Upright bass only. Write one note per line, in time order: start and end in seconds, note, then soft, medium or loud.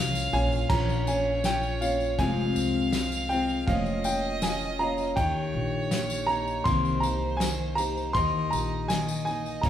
0.00 0.29 C2 medium
0.33 0.66 A#1 medium
0.70 2.15 A#1 loud
2.19 2.54 F1 medium
2.56 3.64 C2 medium
3.68 5.13 F1 loud
5.17 5.52 D#2 medium
5.54 6.62 A#1 medium
6.66 8.11 C2 medium
8.15 8.50 D#2 medium
8.52 9.60 A#1 medium
9.63 9.70 A#1 medium